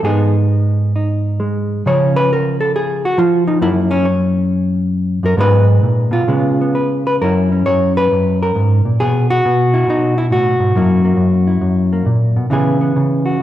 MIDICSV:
0, 0, Header, 1, 2, 480
1, 0, Start_track
1, 0, Tempo, 453858
1, 41, Time_signature, 4, 2, 24, 8
1, 1961, Tempo, 442152
1, 6281, Tempo, 454545
1, 8681, Tempo, 442152
1, 14455, End_track
2, 0, Start_track
2, 0, Title_t, "Hollow-body jazz guitar"
2, 0, Program_c, 0, 26
2, 31, Note_on_c, 0, 44, 72
2, 45, Note_on_c, 0, 56, 52
2, 50, Note_on_c, 0, 68, 83
2, 54, Note_on_c, 0, 59, 50
2, 65, Note_on_c, 0, 63, 49
2, 369, Note_off_c, 0, 68, 0
2, 999, Note_off_c, 0, 63, 0
2, 1011, Note_on_c, 0, 63, 42
2, 1466, Note_off_c, 0, 56, 0
2, 1478, Note_on_c, 0, 56, 70
2, 1938, Note_off_c, 0, 44, 0
2, 1938, Note_off_c, 0, 56, 0
2, 1944, Note_off_c, 0, 63, 0
2, 1949, Note_off_c, 0, 59, 0
2, 1967, Note_on_c, 0, 49, 77
2, 1973, Note_on_c, 0, 53, 52
2, 1980, Note_on_c, 0, 61, 52
2, 1982, Note_on_c, 0, 73, 85
2, 2293, Note_off_c, 0, 73, 0
2, 2298, Note_on_c, 0, 71, 102
2, 2450, Note_off_c, 0, 71, 0
2, 2470, Note_off_c, 0, 61, 0
2, 2474, Note_on_c, 0, 70, 77
2, 2772, Note_off_c, 0, 70, 0
2, 2776, Note_on_c, 0, 69, 82
2, 2931, Note_off_c, 0, 69, 0
2, 2942, Note_on_c, 0, 68, 81
2, 3256, Note_off_c, 0, 68, 0
2, 3262, Note_on_c, 0, 66, 84
2, 3385, Note_off_c, 0, 53, 0
2, 3398, Note_on_c, 0, 53, 77
2, 3407, Note_on_c, 0, 65, 87
2, 3408, Note_off_c, 0, 49, 0
2, 3412, Note_off_c, 0, 66, 0
2, 3716, Note_off_c, 0, 65, 0
2, 3721, Note_on_c, 0, 63, 78
2, 3857, Note_off_c, 0, 53, 0
2, 3869, Note_on_c, 0, 42, 78
2, 3875, Note_on_c, 0, 58, 59
2, 3877, Note_off_c, 0, 63, 0
2, 3881, Note_on_c, 0, 64, 97
2, 4189, Note_on_c, 0, 61, 95
2, 4199, Note_off_c, 0, 64, 0
2, 4347, Note_on_c, 0, 73, 54
2, 4351, Note_off_c, 0, 61, 0
2, 5614, Note_off_c, 0, 42, 0
2, 5627, Note_on_c, 0, 42, 66
2, 5654, Note_on_c, 0, 70, 92
2, 5773, Note_off_c, 0, 73, 0
2, 5774, Note_off_c, 0, 58, 0
2, 5775, Note_off_c, 0, 42, 0
2, 5779, Note_on_c, 0, 44, 90
2, 5790, Note_on_c, 0, 56, 62
2, 5796, Note_on_c, 0, 59, 61
2, 5799, Note_off_c, 0, 70, 0
2, 5804, Note_on_c, 0, 63, 56
2, 5816, Note_on_c, 0, 71, 108
2, 6271, Note_off_c, 0, 44, 0
2, 6275, Note_on_c, 0, 46, 73
2, 6573, Note_on_c, 0, 47, 72
2, 6588, Note_off_c, 0, 63, 0
2, 6592, Note_on_c, 0, 65, 93
2, 6599, Note_off_c, 0, 46, 0
2, 6611, Note_off_c, 0, 71, 0
2, 6738, Note_off_c, 0, 56, 0
2, 6740, Note_off_c, 0, 59, 0
2, 6745, Note_off_c, 0, 47, 0
2, 6749, Note_on_c, 0, 49, 73
2, 6754, Note_on_c, 0, 56, 53
2, 6766, Note_on_c, 0, 59, 49
2, 7087, Note_off_c, 0, 59, 0
2, 7105, Note_on_c, 0, 59, 49
2, 7241, Note_off_c, 0, 65, 0
2, 7248, Note_on_c, 0, 71, 54
2, 7571, Note_off_c, 0, 71, 0
2, 7584, Note_on_c, 0, 71, 88
2, 7676, Note_off_c, 0, 71, 0
2, 7709, Note_off_c, 0, 49, 0
2, 7709, Note_off_c, 0, 56, 0
2, 7724, Note_off_c, 0, 59, 0
2, 7739, Note_on_c, 0, 42, 70
2, 7741, Note_on_c, 0, 70, 80
2, 7756, Note_on_c, 0, 61, 48
2, 7768, Note_on_c, 0, 64, 50
2, 8050, Note_off_c, 0, 61, 0
2, 8063, Note_on_c, 0, 61, 39
2, 8201, Note_off_c, 0, 42, 0
2, 8205, Note_off_c, 0, 70, 0
2, 8209, Note_on_c, 0, 73, 93
2, 8214, Note_on_c, 0, 42, 67
2, 8524, Note_off_c, 0, 73, 0
2, 8538, Note_on_c, 0, 71, 87
2, 8678, Note_off_c, 0, 42, 0
2, 8691, Note_on_c, 0, 42, 61
2, 9011, Note_off_c, 0, 71, 0
2, 9027, Note_on_c, 0, 70, 74
2, 9161, Note_off_c, 0, 42, 0
2, 9166, Note_on_c, 0, 44, 64
2, 9483, Note_off_c, 0, 44, 0
2, 9491, Note_on_c, 0, 46, 58
2, 9627, Note_off_c, 0, 61, 0
2, 9640, Note_off_c, 0, 64, 0
2, 9645, Note_off_c, 0, 46, 0
2, 9648, Note_off_c, 0, 70, 0
2, 9652, Note_on_c, 0, 68, 95
2, 9658, Note_on_c, 0, 47, 76
2, 9968, Note_off_c, 0, 68, 0
2, 9982, Note_on_c, 0, 66, 113
2, 10128, Note_off_c, 0, 47, 0
2, 10141, Note_on_c, 0, 47, 73
2, 10452, Note_on_c, 0, 64, 79
2, 10584, Note_off_c, 0, 47, 0
2, 10597, Note_on_c, 0, 47, 62
2, 10599, Note_off_c, 0, 64, 0
2, 10626, Note_on_c, 0, 63, 89
2, 10917, Note_off_c, 0, 66, 0
2, 10925, Note_off_c, 0, 63, 0
2, 10931, Note_on_c, 0, 64, 85
2, 11018, Note_off_c, 0, 64, 0
2, 11067, Note_on_c, 0, 45, 62
2, 11087, Note_on_c, 0, 66, 80
2, 11378, Note_off_c, 0, 45, 0
2, 11383, Note_on_c, 0, 44, 61
2, 11539, Note_off_c, 0, 44, 0
2, 11542, Note_off_c, 0, 47, 0
2, 11556, Note_on_c, 0, 54, 51
2, 11561, Note_on_c, 0, 42, 75
2, 11571, Note_on_c, 0, 58, 55
2, 11579, Note_on_c, 0, 64, 49
2, 11862, Note_off_c, 0, 58, 0
2, 11875, Note_on_c, 0, 58, 44
2, 11991, Note_off_c, 0, 42, 0
2, 12004, Note_on_c, 0, 42, 74
2, 12332, Note_off_c, 0, 64, 0
2, 12336, Note_on_c, 0, 64, 41
2, 12475, Note_off_c, 0, 42, 0
2, 12488, Note_on_c, 0, 42, 62
2, 12816, Note_off_c, 0, 58, 0
2, 12829, Note_on_c, 0, 58, 41
2, 12968, Note_off_c, 0, 42, 0
2, 12972, Note_on_c, 0, 46, 64
2, 12987, Note_off_c, 0, 66, 0
2, 13299, Note_off_c, 0, 46, 0
2, 13303, Note_on_c, 0, 47, 52
2, 13443, Note_off_c, 0, 64, 0
2, 13447, Note_off_c, 0, 47, 0
2, 13449, Note_off_c, 0, 58, 0
2, 13451, Note_off_c, 0, 54, 0
2, 13451, Note_on_c, 0, 49, 73
2, 13461, Note_on_c, 0, 52, 62
2, 13473, Note_on_c, 0, 59, 64
2, 13479, Note_on_c, 0, 64, 61
2, 13485, Note_on_c, 0, 68, 63
2, 13776, Note_off_c, 0, 59, 0
2, 13789, Note_on_c, 0, 59, 53
2, 13940, Note_off_c, 0, 49, 0
2, 13953, Note_on_c, 0, 49, 67
2, 14266, Note_off_c, 0, 68, 0
2, 14270, Note_on_c, 0, 66, 52
2, 14419, Note_off_c, 0, 59, 0
2, 14420, Note_off_c, 0, 49, 0
2, 14425, Note_off_c, 0, 64, 0
2, 14435, Note_off_c, 0, 66, 0
2, 14438, Note_off_c, 0, 52, 0
2, 14455, End_track
0, 0, End_of_file